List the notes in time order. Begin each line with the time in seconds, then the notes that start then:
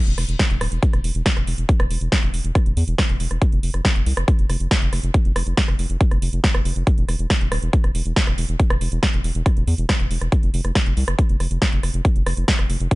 0.07 E1, closed hi-hat
0.18 E1, cross-stick, open hi-hat
0.29 E1, closed hi-hat
0.39 kick, snare, closed hi-hat
0.50 E1, closed hi-hat
0.61 D1, cross-stick, open hi-hat
0.72 E1, closed hi-hat
0.83 kick, closed hi-hat
0.93 E1, cross-stick, closed hi-hat
1.04 E1, open hi-hat
1.15 E1, closed hi-hat
1.26 kick, snare, closed hi-hat
1.36 E1, cross-stick, closed hi-hat
1.47 E1, open hi-hat
1.58 E1, closed hi-hat
1.69 kick, closed hi-hat
1.80 E1, cross-stick, closed hi-hat
1.90 E1, open hi-hat
2.01 E1, closed hi-hat
2.12 kick, cross-stick, snare, closed hi-hat
2.23 E1, closed hi-hat
2.34 E1, open hi-hat
2.44 E1, closed hi-hat
2.55 kick, cross-stick, closed hi-hat
2.66 E1, closed hi-hat
2.77 E2, open hi-hat
2.88 E1, closed hi-hat
2.98 kick, cross-stick, snare, closed hi-hat
3.09 E1, closed hi-hat
3.20 E1, open hi-hat
3.31 E1, cross-stick, closed hi-hat
3.42 kick, closed hi-hat
3.52 F1, closed hi-hat
3.63 F1, open hi-hat
3.74 F1, cross-stick, closed hi-hat
3.85 kick, snare, closed hi-hat
3.96 F1, closed hi-hat
4.06 C2, open hi-hat
4.17 F1, cross-stick, closed hi-hat
4.28 kick, closed hi-hat
4.39 F1, closed hi-hat
4.49 F1, cross-stick, open hi-hat
4.60 F1, closed hi-hat
4.71 kick, snare, closed hi-hat
4.82 F1, closed hi-hat
4.93 F1, cross-stick, open hi-hat
5.03 F1, closed hi-hat
5.14 kick, closed hi-hat
5.25 F1, closed hi-hat
5.36 F1, cross-stick, open hi-hat
5.47 F1, closed hi-hat
5.57 kick, snare, closed hi-hat
5.68 F1, cross-stick, closed hi-hat
5.79 F1, open hi-hat
5.90 F1, closed hi-hat
6.01 kick, closed hi-hat
6.11 F1, cross-stick, closed hi-hat
6.22 F1, open hi-hat
6.33 F1, closed hi-hat
6.44 kick, snare, closed hi-hat
6.55 F1, cross-stick, closed hi-hat
6.65 F1, open hi-hat
6.76 F1, closed hi-hat
6.87 kick, closed hi-hat
6.98 E1, closed hi-hat
7.08 E1, cross-stick, open hi-hat
7.19 E1, closed hi-hat
7.30 kick, snare, closed hi-hat
7.41 E1, closed hi-hat
7.52 D1, cross-stick, open hi-hat
7.62 E1, closed hi-hat
7.73 kick, closed hi-hat
7.84 E1, cross-stick, closed hi-hat
7.95 E1, open hi-hat
8.06 E1, closed hi-hat
8.16 kick, snare, closed hi-hat
8.27 E1, cross-stick, closed hi-hat
8.38 E1, open hi-hat
8.49 E1, closed hi-hat
8.60 kick, closed hi-hat
8.70 E1, cross-stick, closed hi-hat
8.81 E1, open hi-hat
8.92 E1, closed hi-hat
9.03 kick, cross-stick, snare, closed hi-hat
9.13 E1, closed hi-hat
9.24 E1, open hi-hat
9.35 E1, closed hi-hat
9.46 kick, cross-stick, closed hi-hat
9.57 E1, closed hi-hat
9.67 E2, open hi-hat
9.78 E1, closed hi-hat
9.89 kick, cross-stick, snare, closed hi-hat
10.00 E1, closed hi-hat
10.11 E1, open hi-hat
10.21 E1, cross-stick, closed hi-hat
10.32 kick, closed hi-hat
10.43 F1, closed hi-hat
10.54 F1, open hi-hat
10.65 F1, cross-stick, closed hi-hat
10.75 kick, snare, closed hi-hat
10.86 F1, closed hi-hat
10.97 C2, open hi-hat
11.08 F1, cross-stick, closed hi-hat
11.19 kick, closed hi-hat
11.29 F1, closed hi-hat
11.40 F1, cross-stick, open hi-hat
11.51 F1, closed hi-hat
11.62 kick, snare, closed hi-hat
11.72 F1, closed hi-hat
11.83 F1, cross-stick, open hi-hat
11.94 F1, closed hi-hat
12.05 kick, closed hi-hat
12.16 F1, closed hi-hat
12.26 F1, cross-stick, open hi-hat
12.37 F1, closed hi-hat
12.48 kick, snare, closed hi-hat
12.59 F1, cross-stick, closed hi-hat
12.70 F1, open hi-hat
12.80 F1, closed hi-hat
12.91 kick, closed hi-hat